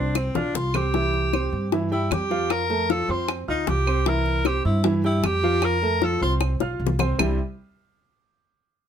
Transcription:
0.00 0.32 C2 medium
0.00 0.28 C4 medium
0.00 0.18 D4 medium
0.00 0.28 C5 medium
0.00 0.28 C6 medium
0.15 0.37 C4 medium
0.15 high bongo medium
0.15 claves medium
0.35 0.53 B1 medium
0.35 0.57 D4 medium
0.35 0.67 F4 medium
0.35 0.67 F5 medium
0.35 0.67 F6 medium
0.35 low bongo medium
0.54 1.46 C2 medium
0.54 0.77 F4 medium
0.54 low bongo loud
0.74 0.90 C4 medium
0.74 1.73 G4 loud
0.74 0.91 C5 medium
0.74 0.91 C6 medium
0.74 low bongo medium
0.74 claves medium
0.94 1.26 E3 medium
0.94 1.26 E4 medium
0.94 1.26 E5 medium
0.94 high bongo medium
1.14 high bongo soft
1.33 1.65 C4 medium
1.33 1.65 C5 medium
1.33 1.65 C6 medium
1.33 high bongo medium
1.33 claves medium
1.52 2.07 G2 medium
1.72 1.88 E3 medium
1.72 1.88 E4 medium
1.72 1.89 E5 medium
1.72 high bongo medium
1.91 2.24 G3 medium
1.91 2.13 E4 medium
1.91 2.24 G4 medium
1.91 2.24 G5 medium
1.91 high bongo soft
2.11 3.03 F2 medium
2.11 2.52 G4 medium
2.11 high bongo medium
2.11 low bongo medium
2.11 claves medium
2.30 2.63 F3 medium
2.30 2.63 F4 medium
2.30 2.63 F5 medium
2.30 high bongo soft
2.50 2.92 A#4 loud
2.50 high bongo medium
2.50 claves medium
2.70 2.86 A3 medium
2.70 2.86 A4 medium
2.70 2.86 A5 medium
2.70 high bongo soft
2.89 3.05 F3 medium
2.89 3.05 F4 medium
2.89 3.12 A4 loud
2.89 3.06 F5 medium
2.89 high bongo medium
3.08 3.45 F2 medium
3.08 3.41 C4 medium
3.08 3.29 F4 medium
3.08 3.41 C5 medium
3.08 3.41 C6 medium
3.28 high bongo medium
3.28 claves medium
3.48 3.66 D2 medium
3.48 3.70 D#4 loud
3.48 3.80 F4 medium
3.48 3.80 F5 medium
3.48 3.80 F6 medium
3.67 4.59 C2 medium
3.67 4.09 G4 loud
3.67 high bongo medium
3.67 low bongo medium
3.87 4.03 C4 medium
3.87 4.03 C5 medium
3.87 4.03 C6 medium
3.87 high bongo soft
3.87 claves medium
4.06 4.38 E3 medium
4.06 4.39 E4 medium
4.06 4.48 A#4 loud
4.06 4.39 E5 medium
4.06 high bongo medium
4.26 high bongo soft
4.45 4.78 C4 medium
4.45 4.65 G4 medium
4.45 4.78 C5 medium
4.45 4.78 C6 medium
4.45 high bongo medium
4.45 claves medium
4.65 5.20 G2 loud
4.65 4.84 E4 medium
4.84 5.01 E3 medium
4.84 5.01 E4 medium
4.84 5.01 E5 medium
4.84 high bongo medium
5.04 5.36 G3 medium
5.04 5.27 E4 medium
5.04 5.37 G4 medium
5.04 5.37 G5 medium
5.04 high bongo soft
5.23 6.15 F2 medium
5.23 5.66 G4 loud
5.23 high bongo medium
5.23 low bongo medium
5.23 claves medium
5.43 5.75 F3 medium
5.43 5.76 F4 loud
5.43 5.76 F5 medium
5.43 high bongo soft
5.62 6.05 A#4 loud
5.62 high bongo medium
5.62 claves medium
5.82 5.99 A3 medium
5.82 5.99 A4 medium
5.82 5.99 A5 medium
5.82 high bongo soft
6.02 6.18 F3 medium
6.02 6.18 F4 medium
6.02 6.22 A4 loud
6.02 6.18 F5 medium
6.02 high bongo medium
6.21 6.58 C2 medium
6.21 6.54 C4 medium
6.21 6.34 F4 medium
6.21 6.54 C5 medium
6.21 6.54 C6 medium
6.41 high bongo medium
6.41 claves medium
6.60 6.79 B1 medium
6.60 6.93 F4 medium
6.60 6.93 F5 medium
6.60 6.93 F6 medium
6.60 high bongo medium
6.80 7.15 C2 medium
6.87 low bongo medium
6.99 7.16 C4 medium
6.99 7.16 C5 medium
6.99 7.16 C6 medium
6.99 low bongo loud
6.99 claves medium
7.18 7.38 C2 medium
7.18 7.37 C3 medium
7.18 7.37 G3 medium
7.18 7.37 C4 medium
7.18 7.38 D4 medium
7.18 7.38 E4 medium
7.18 7.38 G4 loud
7.18 low bongo loud
7.18 claves loud

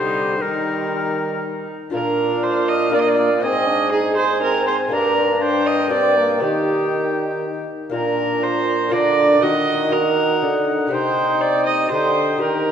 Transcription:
0.00 0.36 C3 medium
0.00 0.43 D3 medium
0.00 0.40 G3 medium
0.00 0.40 D#4 medium
0.00 0.36 G4 soft
0.00 0.43 C5 medium
0.00 0.37 D#5 soft
0.36 1.64 D#3 soft
0.36 1.87 D#4 soft
0.36 1.87 G4 soft
0.41 1.68 D#3 medium
0.41 1.66 G3 medium
0.41 1.71 D#4 medium
0.41 1.68 A#4 medium
1.90 3.39 A#2 medium
1.90 2.88 D4 soft
1.90 2.95 D4 medium
1.90 2.89 F4 soft
1.90 2.90 A#4 soft
1.90 3.44 F5 medium
1.94 2.45 A#4 medium
2.43 2.70 C5 medium
2.68 2.93 D#5 medium
2.90 3.38 D4 medium
2.90 3.40 F4 medium
2.90 3.40 A#4 medium
2.94 3.18 A#3 medium
2.94 3.02 D5 medium
3.01 3.10 D#5 medium
3.08 3.42 D5 medium
3.18 3.30 A#3 medium
3.39 4.88 G#2 medium
3.39 4.86 C4 soft
3.39 4.87 C5 soft
3.43 4.90 G#2 medium
3.43 3.70 C4 medium
3.43 3.92 D#5 loud
3.43 4.95 G#5 medium
3.68 3.93 D4 medium
3.92 4.44 D#4 medium
3.92 4.16 G#4 medium
4.17 4.42 C5 medium
4.42 4.92 C4 medium
4.42 4.66 A#4 loud
4.67 4.75 C5 medium
4.88 6.38 G2 soft
4.88 5.87 A#3 medium
4.88 5.87 D4 soft
4.88 5.88 G4 soft
4.88 5.41 A#4 medium
4.92 6.44 G2 medium
4.92 5.17 D4 medium
4.92 5.44 A#5 medium
5.17 5.94 D4 medium
5.42 5.68 C5 medium
5.42 6.42 G5 medium
5.67 5.91 D#5 medium
5.88 6.37 A#3 medium
5.88 6.39 D4 medium
5.88 6.40 G4 soft
5.88 6.41 D5 medium
5.92 6.19 C4 medium
6.18 6.43 A#3 medium
6.38 7.64 D#3 soft
6.38 7.87 A#3 soft
6.38 7.88 D#4 soft
6.38 7.88 G4 soft
6.43 7.68 D#3 medium
6.43 7.66 D#4 medium
6.43 7.41 G4 medium
6.43 7.66 G5 medium
7.89 8.95 A#2 medium
7.89 8.89 A#2 soft
7.89 8.88 A#3 soft
7.89 8.88 D4 soft
7.89 8.89 F4 soft
7.89 8.44 A#4 medium
7.94 8.89 D4 medium
7.94 8.89 A#5 medium
8.43 8.94 C5 medium
8.89 9.38 D3 medium
8.89 9.38 A#3 medium
8.89 9.39 D4 medium
8.89 9.40 F4 medium
8.89 9.44 D5 loud
8.93 9.42 D3 medium
8.93 9.44 D4 medium
8.93 9.42 A#5 medium
9.39 10.38 D#3 medium
9.39 10.40 D#3 medium
9.39 9.87 A#3 soft
9.39 9.88 D#4 soft
9.39 9.92 D#4 medium
9.39 9.89 F#4 soft
9.39 9.94 D#5 loud
9.39 9.91 F#5 medium
9.88 10.38 A#3 soft
9.88 10.88 F#4 medium
9.88 10.87 D#5 soft
9.92 10.90 D#4 medium
9.92 10.67 A#4 medium
9.92 10.95 F#5 medium
10.42 10.87 D3 medium
10.42 10.93 D3 medium
10.87 11.87 C3 medium
10.87 11.86 D#4 soft
10.87 11.87 G4 soft
10.91 11.91 C3 medium
10.91 11.90 D#4 medium
10.91 11.42 C5 medium
10.91 11.92 G5 medium
11.41 11.66 D5 medium
11.66 11.91 D#5 medium
11.88 12.43 D3 medium
11.88 12.38 D3 medium
11.88 12.38 G4 medium
11.88 12.41 C5 medium
11.88 12.38 D#5 soft
11.92 12.41 D#4 medium
11.92 12.41 G5 medium
12.38 12.72 D#3 medium
12.38 12.72 D#3 soft
12.38 12.72 D#4 soft
12.38 12.72 G4 soft
12.38 12.72 A#4 medium
12.42 12.72 D#4 medium
12.42 12.72 G5 medium

